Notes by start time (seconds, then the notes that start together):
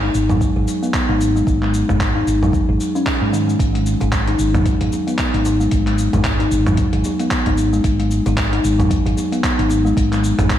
0.03 D#4
0.14 G#1, cabasa
0.30 F#3, mid tom, cabasa
0.41 kick, cabasa
0.56 G#1 G#4
0.68 cabasa
0.83 B3, cabasa
0.94 kick, clap, cabasa
1.09 G#1 D#4
1.21 cabasa
1.36 G#3, cabasa
1.47 G#1, kick, cabasa
1.62 G#3, clap
1.74 cabasa
1.89 G#1 G#4, mid tom, cabasa
2.00 kick, clap, cabasa
2.15 D#4
2.27 G#1, cabasa
2.42 F#3, mid tom, cabasa
2.53 kick, cabasa
2.69 G#1 G#4
2.81 cabasa
2.95 C#4, cabasa
3.06 G#4, kick, clap, cabasa
3.22 G#2 G#3
3.33 D#3, cabasa
3.48 G#3, cabasa
3.59 G#1, kick, closed hi-hat, cabasa
3.74 G#3, closed hi-hat
3.86 cabasa
4.01 G#1 G#4, closed hi-hat, djembe slap, cabasa
4.12 kick, clap, closed hi-hat, cabasa
4.27 D#4, closed hi-hat, djembe slap
4.39 G#1, cabasa
4.54 F#3, closed hi-hat, mid tom, djembe bass, cabasa
4.66 kick, closed hi-hat, cabasa
4.81 G#1 G#4, closed hi-hat, djembe slap
4.92 djembe tone, cabasa
5.07 B3, closed hi-hat, cabasa
5.18 kick, clap, closed hi-hat, cabasa
5.34 G#1 D#4, closed hi-hat
5.45 djembe slap, cabasa
5.60 G#3, djembe tone, cabasa
5.71 G#1, kick, closed hi-hat, cabasa
5.86 G#3, clap, closed hi-hat
5.98 cabasa
6.13 G#1 G#4, closed hi-hat, mid tom, djembe slap, cabasa
6.24 kick, clap, closed hi-hat, cabasa
6.39 D#4, closed hi-hat, djembe slap
6.51 G#1, cabasa
6.66 F#3, closed hi-hat, mid tom, cabasa
6.77 kick, closed hi-hat, cabasa
6.93 G#1 G#4, closed hi-hat
7.04 djembe tone, cabasa
7.19 B3, closed hi-hat, cabasa
7.31 kick, clap, closed hi-hat, cabasa
7.46 G#1 D#4, closed hi-hat, djembe tone, djembe bass
7.58 cabasa
7.73 G#3, cabasa
7.84 G#1, kick, closed hi-hat, cabasa
8.00 G#3, closed hi-hat
8.11 cabasa
8.26 G#1 G#4, closed hi-hat, djembe slap, cabasa
8.37 kick, clap, closed hi-hat, cabasa
8.53 D#4, closed hi-hat, djembe slap
8.64 G#1, cabasa
8.79 F#3, closed hi-hat, mid tom, djembe bass, cabasa
8.91 kick, closed hi-hat, cabasa
9.06 G#1 G#4, closed hi-hat, djembe slap
9.17 djembe tone, cabasa
9.32 B3, closed hi-hat, cabasa
9.44 kick, clap, closed hi-hat, cabasa
9.59 G#1 D#4, closed hi-hat
9.70 djembe slap, cabasa
9.85 G#3, djembe tone, cabasa
9.97 G#1, kick, closed hi-hat, cabasa
10.12 G#3, clap, closed hi-hat, cabasa
10.24 cabasa
10.38 G#1 G#4, closed hi-hat, mid tom, djembe slap, cabasa
10.50 kick, clap, closed hi-hat, cabasa